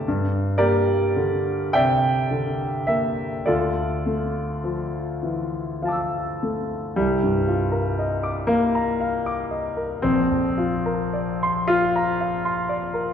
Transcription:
0.08 G2
0.58 A#3 G4 A#4 D5
1.16 D3
1.73 C3 D5 E5 G5
2.31 D3
2.87 A#3 E5
3.46 D2 F4 A4 D5
4.06 A3
4.64 F3
5.23 E3
5.82 F3 F5 A5
5.88 D6 E6
6.43 A3
6.96 C2 G3
7.23 G2
7.47 F4
7.72 A#4
7.99 D#5
8.23 D6
8.47 A#3 F5
8.75 A#5
9.01 F5
9.26 D6
9.51 D#5
9.77 A#4
10.02 A#1 C4
10.31 F2
10.58 F4
10.86 A#4
11.13 D5
11.43 C6
11.67 F4 F5
11.96 A#5
12.21 F5
12.45 C6
12.69 D5
12.94 A#4

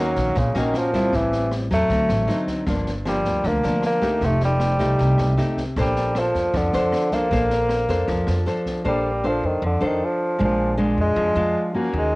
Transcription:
Already playing: D#2 D#3 A#3 C#4 F#4
0.00 F#3
0.16 A#1, kick, snare
0.35 A#1 A#2 C#3, kick, snare
0.55 A#1 D#3 A#3 C#4 F#4, snare
0.74 F3, cross-stick, snare
0.93 G3 C4 E4, kick, snare
1.13 A1 A2 E3, kick, snare
1.32 snare
1.51 cross-stick, snare
1.71 E2 F#3 A3 C4, kick, snare
1.90 D2 D3, kick, snare
2.09 A1, cross-stick, snare
2.27 F#3 C4 D#4, snare
2.47 kick, snare
2.67 G1 G2 F3 A#3 D4, kick, cross-stick, snare
2.86 snare
3.05 F3 G3 A#3 D4, cross-stick, snare
3.25 D2, kick, snare
3.44 D2 D3 A#3, kick, snare
3.63 D2 F3 A#3 D4, snare
3.82 cross-stick, snare
3.86 A#3
4.02 A3 D#4 G4, kick, snare
4.21 F1 F3, kick, snare
4.25 A3
4.40 snare
4.45 G3
4.60 cross-stick, snare
4.79 C2 A3 D#4 G4, kick, snare
4.99 C2 C3, kick, snare
5.18 C2, cross-stick, snare
5.37 A3 D#4 G4, snare
5.57 kick, snare
5.76 A#1 A#3 D4 A4 C5, kick, cross-stick, snare
5.80 G3
5.96 snare
6.15 D4 A4 C5, cross-stick, snare
6.19 F3
6.34 F2, kick, snare
6.54 F2 D3 F3, kick, snare
6.73 F2 D4 A4 C5, snare
6.93 cross-stick, snare
7.11 A#3 D4 A4 C5, kick, snare
7.31 A#1 A#3 D4 A4 C5, kick, snare
7.50 snare
7.69 cross-stick, snare
7.88 F2 D4 A4 C5, kick, snare
8.08 F2 F3, kick, snare
8.27 F2, cross-stick, snare
8.46 D4 A4 C5, snare
8.66 kick, snare
8.84 A#1 G3 A#3 D4 A4 C5
9.24 D4 A4 C5
9.28 F3
9.43 F2 D#3
9.62 F2 F3
9.66 D3
9.80 F2 D4 A4 C5
9.86 D#3
10.05 F3
10.38 A#1 A#2 G#3 D4 F4
10.45 F3
10.78 G#3 D4 F4
10.98 F2 G#3
11.16 F2 F3
11.36 F2 G#3 D4 F4
11.74 A#3 C#4 F#4
11.93 D#2 D#3
11.97 G#3

